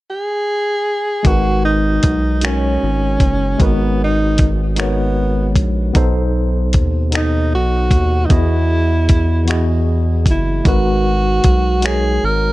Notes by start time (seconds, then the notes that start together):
0.10 G#4
1.23 G#1 G#3 D#4 F#4 A#4, kick, closed hi-hat
1.27 B4
1.65 D#4
2.03 B1, kick, closed hi-hat
2.41 G#3 C#4 D#4 F#4 A#4, finger snap, closed hi-hat
2.46 C#5
2.83 G#1
3.20 F#1, kick, closed hi-hat
3.58 G#1 G#3 D#4 F#4 A#4, kick, closed hi-hat
3.62 B3 B4
4.04 D#4
4.38 kick, closed hi-hat
4.75 G#3 D#4 F#4 A#4, closed hi-hat
4.80 B3 C#5, finger snap
5.56 A#1, kick, closed hi-hat
5.93 B1 B2 B3 D#4 A4, kick, closed hi-hat
5.97 C5
6.73 D#2, kick, closed hi-hat
7.10 B2 B3 D#4 A4, closed hi-hat
7.15 D#4 D#5, finger snap
7.54 B1 F#4
7.91 D#2, kick, closed hi-hat
8.26 E3 B3 D#4
8.30 E2 E4 F#4 G#4 D#5, kick, closed hi-hat
9.09 kick, closed hi-hat
9.45 E3 B3 F#4, closed hi-hat
9.49 G#4 D#5, finger snap
10.26 F#1, kick, closed hi-hat
10.31 E4
10.64 G#1 G#3 D#4 F#4 A#4, kick, closed hi-hat
10.68 F#4 B4
11.44 B1, kick, closed hi-hat
11.81 G#3 D#4 F#4 A#4, closed hi-hat
11.85 G#4 C#5, finger snap
12.24 G#1 A#4